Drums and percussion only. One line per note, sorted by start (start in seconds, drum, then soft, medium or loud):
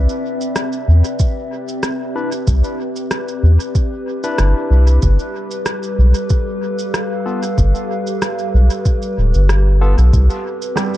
0.09 shaker soft
0.41 shaker soft
0.56 cross-stick medium
0.56 shaker medium
0.72 shaker soft
1.05 shaker soft
1.19 kick loud
1.19 shaker soft
1.68 shaker soft
1.83 cross-stick medium
1.83 shaker soft
2.32 shaker soft
2.47 kick loud
2.47 shaker soft
2.64 shaker soft
2.96 shaker soft
3.11 cross-stick medium
3.11 shaker soft
3.28 shaker soft
3.60 shaker soft
3.75 kick loud
3.75 shaker soft
4.23 shaker soft
4.38 cross-stick medium
4.38 shaker soft
4.87 shaker soft
5.02 kick loud
5.02 shaker soft
5.19 shaker soft
5.51 shaker soft
5.66 cross-stick medium
5.66 shaker medium
5.83 shaker soft
6.14 shaker soft
6.29 kick loud
6.29 shaker soft
6.79 shaker soft
6.94 cross-stick medium
6.94 shaker soft
7.43 shaker soft
7.58 kick loud
7.58 shaker soft
7.75 shaker soft
8.07 shaker soft
8.22 cross-stick medium
8.22 shaker soft
8.39 shaker soft
8.70 shaker soft
8.85 kick loud
8.85 shaker soft
9.02 shaker soft
9.34 shaker soft
9.49 cross-stick medium
9.49 shaker soft
9.98 shaker soft
10.13 kick loud
10.13 shaker soft
10.30 shaker soft
10.62 shaker soft
10.77 cross-stick medium
10.77 shaker soft
10.94 shaker soft